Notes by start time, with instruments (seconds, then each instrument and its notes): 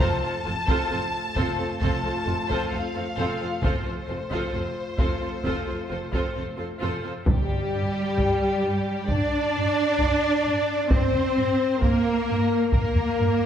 0.00 double bass section F1, french horn section A3 F4, viola section C4 F4, violin section A4 C5 A5, taiko
0.21 cello section F2, viola section C4 F4, violin section A4 C5
0.44 double bass section F1, cello section F2, viola section C4 F4, violin section A4 C5
0.67 cello section F2, viola section C4 F4, violin section A4 C5, taiko
0.89 double bass section F1, cello section F2, viola section C4 F4, violin section A4 C5
1.34 double bass section F1, cello section F2, viola section C4 F4, violin section A4 C5, taiko
1.57 cello section F2, viola section C4 F4, violin section A4 C5
1.80 double bass section F1, cello section F2, viola section C4 F4, violin section A4 C5 A5, taiko
2.03 cello section F2, viola section C4 F4, violin section A4 C5
2.25 double bass section F1, cello section F2, viola section C4 F4, violin section A4 C5
2.48 cello section F2, viola section C4 F4, violin section A4 C5, taiko
2.71 double bass section F1, cello section F2, viola section C4 F4, violin section A4 C5 F5
2.94 cello section F2, viola section C4 F4, violin section A4 C5
3.16 double bass section F1, cello section F2, viola section C4 F4, violin section A4 C5
3.40 cello section F2, viola section C4 F4, violin section A4 C5
3.62 double bass section F1, cello section F2, french horn section A3 F4, viola section C4 F4, violin section A4 C5, taiko
3.84 cello section F2, viola section C4 F4, violin section A4 C5
4.07 double bass section F1, cello section F2, viola section C4 F4, violin section A4 C5
4.31 cello section F2, viola section C4 F4, violin section A4 C5, taiko
4.53 double bass section F1, cello section F2, viola section C4 F4, violin section A4 C5
4.98 double bass section F1, cello section F2, viola section C4 F4, violin section A4 C5, taiko
5.22 cello section F2, viola section C4 F4, violin section A4 C5
5.44 double bass section F1, cello section F2, viola section C4 F4, violin section A4 C5, taiko
5.67 cello section F2, viola section C4 F4, violin section A4 C5
5.89 double bass section F1, cello section F2, viola section C4 F4, violin section A4 C5
6.12 cello section F2, viola section C4 F4, violin section A4 C5, taiko
6.34 double bass section F1, cello section F2, viola section C4 F4, violin section A4 C5
6.57 cello section F2, viola section C4 F4, violin section A4 C5
6.80 double bass section F1, cello section F2, viola section C4 F4, violin section A4 C5
7.03 cello section F2, viola section C4 F4, violin section A4 C5
7.25 double bass section G2, timpani G2, cello section G3, viola section G3, french horn section G3, violin section G4, taiko
7.72 double bass section G2
8.18 double bass section G2, taiko
8.63 double bass section G2
9.07 double bass section G2, cello section D4, viola section D4, french horn section D4, violin section D5, taiko
9.54 double bass section G2
10.00 double bass section G2, taiko
10.46 double bass section G2
10.89 double bass section G2, cello section C4, viola section C4, french horn section C4, violin section C5, taiko
11.14 taiko low
11.37 double bass section G2
11.80 double bass section G2, viola section A#3, french horn section A#3, cello section A#3, violin section A#4, taiko
12.29 double bass section G2
12.71 double bass section G2, cello section A#3, viola section A#3, french horn section A#3, violin section A#4, taiko
12.95 taiko low
13.19 double bass section G2